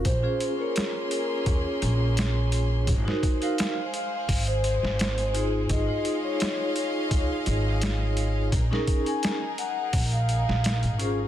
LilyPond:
<<
  \new Staff \with { instrumentName = "Soft synth lead" } { \time 4/4 \key bes \minor \tempo 4 = 85 c''8. bes'8. bes'8. r4. r16 | r8. f''8. f''8. c''4. r16 | ees''8. des''8. des''8. r4. r16 | r8. aes''8. ges''8. f''4. r16 | }
  \new Staff \with { instrumentName = "Violin section" } { \time 4/4 \key bes \minor <bes des' aes' c'''>1 | <aes aes' c''>1 | <aes' ees'' f'' c'''>1 | <ees' aes' bes'>1 | }
  \new Staff \with { instrumentName = "Vibraphone" } { \time 4/4 \key bes \minor r16 <des' f' aes' c''>8 <des' f' aes' des''>2.~ <des' f' aes' des''>16 | r16 <ees' ges' bes' c''>8 <ees' ges' bes' c''>8 r2 r16 <ees' f' aes' c''>8~ | <ees' f' aes' c''>16 <ees' f' aes' c''>8 <ees' f' aes' des''>2.~ <ees' f' aes' des''>16 | r16 <des' ees' aes' bes'>8 <des' ees' aes' bes'>8 r2 r16 <des' f' aes' c''>8 | }
  \new Staff \with { instrumentName = "Upright bass" } { \clef bass \time 4/4 \key bes \minor bes,,16 r4. r16 ees,16 r16 bes,,4. | aes,,16 r4. r16 aes,,8. aes,,4~ aes,,16 | aes,,16 r4. r16 des,16 r16 aes,,4. | bes,,16 r4. r16 bes,,8. bes,,8 aes,,8. | }
  \new DrumStaff \with { instrumentName = "Drums" } \drummode { \time 4/4 <hh bd>8 hh8 <hh sn>8 hh8 <hh bd>8 hh8 <hh sn>8 hh8 | <hh bd>16 sn16 <hh bd>16 hh16 <hh sn>8 hh8 <hho bd>16 hh16 hh16 sn16 <hh sn>16 hh16 hh8 | <hh bd>8 hh8 <hh sn>8 hh8 <hh bd>8 hh8 <hh sn>8 hh8 | <hh bd>16 sn16 <hh bd>16 hh16 <hh sn>8 hh8 <hho bd>16 hh16 hh16 sn16 <hh sn>16 hh16 hh8 | }
>>